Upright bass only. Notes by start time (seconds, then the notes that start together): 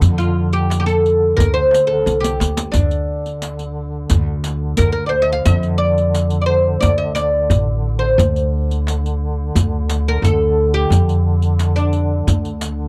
0.01 F2
1.39 D2
2.06 C2
2.41 D2
2.74 D2
4.11 D2
4.78 D2
5.46 F2
6.82 D2
7.50 A1
8.18 D2
9.55 D2
10.22 D2
10.90 F2
12.27 D2